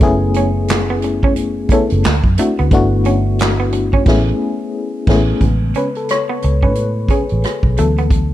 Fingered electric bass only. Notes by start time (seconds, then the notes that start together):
0.02 F#1
1.70 muted fingered electric bass stroke
1.92 F#1
2.06 D2
2.25 F#2
2.60 D2
2.72 G1
4.07 A1
5.08 A1
5.42 A1
6.44 C#2
6.64 A2
7.32 A1
7.64 B1
7.79 D2